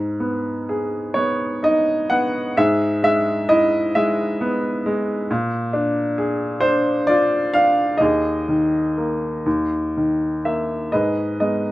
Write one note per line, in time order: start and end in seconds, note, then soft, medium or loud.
0.00 2.52 G#2 soft
0.20 1.14 B3 soft
0.69 2.53 G#4 soft
1.14 2.09 B3 soft
1.14 1.63 C#5 medium
1.63 2.53 D#4 soft
1.63 2.12 D#5 medium
2.10 2.55 B3 soft
2.10 2.58 F#5 medium
2.57 5.26 G#2 medium
2.57 3.91 G#4 medium
2.57 3.02 E5 medium
3.03 3.94 G#3 soft
3.03 3.51 E5 medium
3.49 5.26 E4 medium
3.49 3.92 D#5 medium
3.95 4.84 G#3 medium
3.95 4.93 E5 medium
4.41 5.27 B3 medium
4.86 5.28 G#3 medium
5.31 7.98 A#2 medium
5.73 6.61 D4 medium
6.18 7.98 G#4 medium
6.60 7.53 D4 medium
6.60 7.09 C5 medium
7.07 7.99 F4 medium
7.07 7.56 D5 medium
7.54 8.00 D4 soft
7.54 7.97 F5 medium
7.98 9.41 D#2 medium
7.98 10.38 D#5 medium
8.02 10.40 G#4 medium
8.49 9.43 D#3 soft
8.98 9.45 A#3 soft
9.46 10.89 D#2 medium
9.97 10.91 D#3 soft
10.45 10.92 A#3 soft
10.45 10.95 E5 medium
10.92 11.72 G#2 soft
10.92 11.72 G#4 soft
10.92 11.72 B4 soft
10.92 11.39 D#5 medium
11.40 11.72 G#3 soft
11.40 11.72 B3 soft
11.40 11.72 D#4 soft
11.40 11.72 D#5 medium